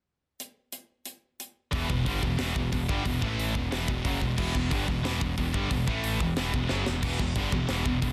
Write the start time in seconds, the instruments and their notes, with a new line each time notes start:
0.40 closed hi-hat
0.72 closed hi-hat
1.06 closed hi-hat
1.40 closed hi-hat
1.71 picked electric bass E1, distorted electric guitar E2 B2 E3, kick, open hi-hat
1.89 picked electric bass E1, distorted electric guitar E2 B2, kick
2.06 picked electric bass G1, distorted electric guitar G2 D3 G3, kick, open hi-hat
2.23 picked electric bass E1, distorted electric guitar E2 B2, kick
2.38 picked electric bass E1, distorted electric guitar E2 B2 E3, snare, open hi-hat
2.56 picked electric bass E1, distorted electric guitar E2 B2, kick
2.72 picked electric bass E1, distorted electric guitar E2 B2, kick, open hi-hat
2.88 picked electric bass G1, distorted electric guitar G2 D3 G3, kick
3.05 picked electric bass E1, distorted electric guitar E2 B2, kick, open hi-hat
3.21 picked electric bass A1, distorted electric guitar A2 E3 A3, kick
3.39 open hi-hat
3.55 picked electric bass E1, distorted electric guitar E2 B2, kick
3.71 picked electric bass E1, distorted electric guitar E2 B2 E3, snare, open hi-hat
3.88 picked electric bass E1, distorted electric guitar E2 B2, kick
4.05 picked electric bass F#1, distorted electric guitar F#2 C#3 F#3, kick, open hi-hat
4.21 picked electric bass E1, distorted electric guitar E2 B2, kick
4.38 picked electric bass E1, distorted electric guitar E2 B2 E3, kick, crash
4.54 picked electric bass E1, distorted electric guitar E2 B2, kick
4.70 picked electric bass G1, distorted electric guitar G2 D3 G3, kick, open hi-hat
4.88 picked electric bass E1, distorted electric guitar E2 B2, kick
5.03 picked electric bass E1, distorted electric guitar E2 B2 E3, snare, open hi-hat
5.21 picked electric bass E1, distorted electric guitar E2 B2, kick
5.38 picked electric bass E1, distorted electric guitar E2 B2, kick, open hi-hat
5.54 picked electric bass G1, distorted electric guitar G2 D3 G3, kick
5.71 picked electric bass E1, distorted electric guitar E2 B2, kick, open hi-hat
5.87 picked electric bass A1, distorted electric guitar A2 E3 A3, kick
6.04 open hi-hat
6.20 picked electric bass E1, distorted electric guitar E2 B2, kick
6.36 picked electric bass E1, distorted electric guitar E2 B2 E3, snare, open hi-hat
6.53 picked electric bass E1, distorted electric guitar E2 B2, kick
6.69 picked electric bass F#1, distorted electric guitar F#2 C#3 F#3, snare
6.86 picked electric bass E1, distorted electric guitar E2 B2, snare
7.02 picked electric bass E1, distorted electric guitar E2 B2 E3, kick, crash
7.19 picked electric bass E1, distorted electric guitar E2 B2, kick
7.36 picked electric bass G1, distorted electric guitar G2 D3 G3, kick, open hi-hat
7.52 picked electric bass E1, distorted electric guitar E2 B2, kick
7.69 picked electric bass E1, distorted electric guitar E2 B2 E3, snare, open hi-hat
7.85 picked electric bass E1, distorted electric guitar E2 B2, kick
8.02 picked electric bass E1, distorted electric guitar E2 B2, kick, open hi-hat